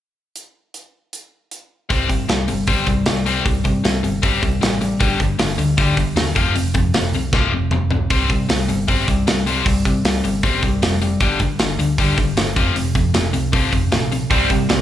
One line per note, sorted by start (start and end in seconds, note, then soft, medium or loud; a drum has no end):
0.36 closed hi-hat medium
0.74 closed hi-hat medium
1.13 closed hi-hat medium
1.51 closed hi-hat medium
1.89 2.06 C2 medium
1.89 2.08 C3 medium
1.89 2.08 G3 medium
1.89 2.09 C4 medium
1.89 kick loud
1.89 open hi-hat medium
2.09 2.27 C3 medium
2.09 2.26 C3 medium
2.09 2.27 G3 medium
2.09 kick medium
2.09 open hi-hat medium
2.29 2.45 C2 medium
2.29 2.46 C3 medium
2.29 2.46 G3 medium
2.29 snare loud
2.29 open hi-hat medium
2.48 2.65 G1 medium
2.48 2.66 C3 medium
2.48 2.66 G3 medium
2.48 open hi-hat medium
2.67 2.84 G1 medium
2.67 2.85 C3 medium
2.67 2.86 G3 medium
2.67 2.86 C4 medium
2.67 kick loud
2.67 open hi-hat medium
2.86 3.03 C2 medium
2.86 3.04 C3 medium
2.86 3.05 G3 medium
2.86 kick medium
2.86 open hi-hat medium
3.06 3.39 C2 medium
3.06 3.24 C3 medium
3.06 3.24 G3 medium
3.06 snare loud
3.06 open hi-hat medium
3.26 3.44 C3 medium
3.26 3.44 G3 medium
3.26 3.45 C4 loud
3.26 open hi-hat medium
3.45 3.62 C2 medium
3.45 3.63 C3 medium
3.45 3.63 G3 medium
3.45 kick loud
3.45 open hi-hat medium
3.64 3.82 C3 medium
3.64 3.81 C3 medium
3.64 3.82 G3 medium
3.64 kick medium
3.64 open hi-hat medium
3.84 4.01 C2 medium
3.84 4.01 C3 medium
3.84 4.02 G3 medium
3.84 snare loud
3.84 open hi-hat medium
4.03 4.20 G1 medium
4.03 4.21 C3 medium
4.03 4.21 G3 medium
4.03 open hi-hat medium
4.22 4.39 G1 medium
4.22 4.41 C3 medium
4.22 4.41 G3 medium
4.22 4.41 C4 medium
4.22 kick loud
4.22 open hi-hat medium
4.42 4.59 C2 medium
4.42 4.60 C3 medium
4.42 4.60 G3 medium
4.42 kick medium
4.42 open hi-hat medium
4.61 4.94 A1 medium
4.61 4.79 C3 medium
4.61 4.79 G3 medium
4.61 snare loud
4.61 open hi-hat medium
4.81 4.98 C3 medium
4.81 4.99 G3 medium
4.81 open hi-hat soft
5.00 5.17 G1 loud
5.00 5.18 G2 medium
5.00 5.18 D3 medium
5.00 5.19 G3 loud
5.00 kick loud
5.00 open hi-hat medium
5.19 5.37 G2 medium
5.19 5.36 G2 medium
5.19 5.37 D3 medium
5.19 kick medium
5.19 open hi-hat medium
5.38 5.55 G1 medium
5.38 5.56 G2 medium
5.38 5.57 D3 medium
5.38 snare loud
5.38 open hi-hat medium
5.58 5.74 D2 medium
5.58 5.76 G2 medium
5.58 5.76 D3 medium
5.58 open hi-hat medium
5.77 5.94 D2 medium
5.77 5.95 G2 medium
5.77 5.96 D3 medium
5.77 5.96 G3 loud
5.77 kick loud
5.77 open hi-hat medium
5.96 6.14 G1 medium
5.96 6.14 G2 medium
5.96 6.15 D3 medium
5.96 kick medium
5.96 open hi-hat medium
6.15 6.32 D#2 medium
6.15 6.34 G2 medium
6.15 6.34 D3 medium
6.15 snare loud
6.15 open hi-hat medium
6.35 6.52 F1 medium
6.35 6.54 F2 medium
6.35 6.54 C3 medium
6.35 6.54 F3 medium
6.35 kick medium
6.35 open hi-hat medium
6.55 6.71 F1 loud
6.55 6.73 F2 medium
6.55 6.73 C3 medium
6.55 open hi-hat medium
6.74 6.92 F2 medium
6.74 6.91 F2 medium
6.74 6.92 C3 medium
6.74 kick medium
6.74 open hi-hat medium
6.93 7.10 F1 medium
6.93 7.12 F2 medium
6.93 7.12 C3 medium
6.93 snare loud
6.93 open hi-hat medium
7.13 7.29 C2 medium
7.13 7.32 F2 medium
7.13 7.32 C3 medium
7.13 open hi-hat medium
7.33 7.49 C2 medium
7.33 7.51 F2 medium
7.33 7.52 C3 medium
7.33 7.52 F3 loud
7.33 kick loud
7.33 snare medium
7.52 7.68 F1 medium
7.52 7.70 F2 medium
7.52 7.70 C3 medium
7.71 8.04 F1 medium
7.71 7.89 F2 medium
7.71 7.90 C3 medium
7.71 mid tom medium
7.91 8.09 F2 medium
7.91 8.09 C3 medium
7.91 floor tom medium
8.10 8.27 C2 loud
8.10 8.29 C3 medium
8.10 8.29 G3 medium
8.10 8.29 C4 medium
8.10 kick loud
8.10 open hi-hat medium
8.29 8.46 C3 medium
8.29 8.47 C3 medium
8.29 8.48 G3 medium
8.29 kick medium
8.29 open hi-hat medium
8.49 8.66 C2 medium
8.49 8.67 C3 medium
8.49 8.67 G3 medium
8.49 snare loud
8.49 open hi-hat medium
8.68 8.85 G1 medium
8.68 8.86 C3 medium
8.68 8.87 G3 medium
8.68 open hi-hat medium
8.88 9.05 G1 medium
8.88 9.06 C3 medium
8.88 9.07 G3 medium
8.88 9.07 C4 loud
8.88 kick loud
8.88 open hi-hat medium
9.08 9.24 C2 medium
9.08 9.25 C3 medium
9.08 9.25 G3 medium
9.08 kick medium
9.08 open hi-hat medium
9.27 9.60 C2 medium
9.27 9.45 C3 medium
9.27 9.45 G3 medium
9.27 snare loud
9.27 open hi-hat medium
9.46 9.65 C3 medium
9.46 9.65 G3 medium
9.46 9.65 C4 loud
9.46 open hi-hat medium
9.66 9.82 C2 medium
9.66 9.83 C3 medium
9.66 9.84 G3 medium
9.66 kick loud
9.66 open hi-hat medium
9.85 10.02 C3 medium
9.85 10.03 C3 medium
9.85 10.03 G3 medium
9.85 kick medium
9.85 open hi-hat medium
10.04 10.21 C2 medium
10.04 10.22 C3 medium
10.04 10.23 G3 medium
10.04 snare loud
10.04 open hi-hat medium
10.23 10.40 G1 medium
10.23 10.42 C3 medium
10.23 10.42 G3 medium
10.23 open hi-hat medium
10.43 10.60 G1 medium
10.43 10.62 C3 medium
10.43 10.62 G3 medium
10.43 10.62 C4 loud
10.43 kick loud
10.43 open hi-hat medium
10.63 10.79 C2 medium
10.63 10.80 C3 medium
10.63 10.80 G3 medium
10.63 kick medium
10.63 open hi-hat medium
10.81 11.14 F1 medium
10.81 11.00 C3 medium
10.81 11.00 G3 medium
10.81 snare loud
10.81 open hi-hat medium
11.02 11.19 C3 medium
11.02 11.19 G3 medium
11.02 open hi-hat medium
11.20 11.37 G1 loud
11.20 11.39 G2 medium
11.20 11.39 D3 loud
11.20 11.40 G3 medium
11.20 kick loud
11.20 open hi-hat medium
11.39 11.56 G2 medium
11.39 11.58 G2 medium
11.39 11.58 D3 medium
11.39 kick medium
11.39 open hi-hat medium
11.58 11.75 G1 medium
11.58 11.77 G2 medium
11.58 11.77 D3 medium
11.58 snare loud
11.58 open hi-hat medium
11.78 11.95 D2 medium
11.78 11.96 G2 medium
11.78 11.97 D3 medium
11.78 open hi-hat medium
11.98 12.14 D2 medium
11.98 12.16 G2 medium
11.98 12.17 D3 loud
11.98 12.17 G3 loud
11.98 kick loud
11.98 open hi-hat medium
12.17 12.34 G1 medium
12.17 12.35 G2 medium
12.17 12.35 D3 medium
12.17 kick medium
12.17 open hi-hat medium
12.36 12.53 G1 medium
12.36 12.54 G2 medium
12.36 12.55 D3 medium
12.36 snare loud
12.36 open hi-hat medium
12.56 12.73 F1 medium
12.56 12.74 F2 loud
12.56 12.75 C3 loud
12.56 12.75 F3 loud
12.56 kick medium
12.56 open hi-hat soft
12.75 12.92 F1 loud
12.75 12.93 F2 medium
12.75 12.93 C3 medium
12.75 open hi-hat medium
12.95 13.13 F2 medium
12.95 13.11 F2 medium
12.95 13.13 C3 medium
12.95 kick medium
12.95 open hi-hat medium
13.14 13.31 F1 medium
13.14 13.32 F2 medium
13.14 13.32 C3 medium
13.14 snare loud
13.14 open hi-hat medium
13.33 13.50 C2 medium
13.33 13.51 F2 medium
13.33 13.51 C3 medium
13.33 open hi-hat medium
13.52 13.69 C2 medium
13.52 13.71 F2 medium
13.52 13.71 C3 medium
13.52 13.72 F3 loud
13.52 kick loud
13.52 open hi-hat medium
13.72 13.89 F1 medium
13.72 13.90 F2 medium
13.72 13.90 C3 medium
13.72 kick medium
13.72 open hi-hat medium
13.92 14.25 A#1 medium
13.92 14.09 F2 medium
13.92 14.09 C3 medium
13.92 snare loud
13.92 open hi-hat medium
14.12 14.29 F2 medium
14.12 14.29 C3 medium
14.12 open hi-hat medium
14.30 14.47 C2 medium
14.30 14.49 C3 medium
14.30 14.49 G3 medium
14.30 14.49 C4 medium
14.30 kick loud
14.30 open hi-hat medium
14.50 14.66 C3 medium
14.50 14.68 C3 medium
14.50 14.68 G3 medium
14.50 kick medium
14.50 open hi-hat medium
14.69 14.82 C2 medium
14.69 14.82 C3 medium
14.69 14.82 G3 medium
14.69 snare loud
14.69 open hi-hat medium